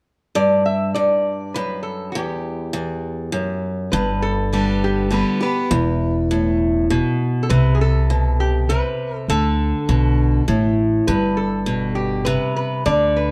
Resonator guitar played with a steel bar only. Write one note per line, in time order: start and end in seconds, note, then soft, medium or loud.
0.36 0.63 D5 medium
0.66 0.94 E5 medium
0.94 1.56 D5 medium
1.54 1.82 B4 medium
1.83 2.12 A4 medium
2.12 3.58 G4 medium
3.92 4.23 B4 medium
4.22 4.84 A4 medium
4.84 5.11 G4 medium
5.14 5.41 B4 medium
5.43 6.57 B4 medium
7.43 7.50 A4 medium
7.50 7.73 B4 medium
7.75 7.81 G#4 medium
7.81 8.36 A4 medium
8.40 8.70 G4 medium
8.69 9.16 B4 medium
9.16 9.29 A4 medium
9.30 10.74 A4 medium
11.07 11.38 B4 medium
11.37 11.95 A4 medium
11.95 12.27 G4 medium
12.25 12.55 B4 medium
12.56 12.86 B4 medium
12.86 13.17 D5 medium
13.16 13.31 B4 medium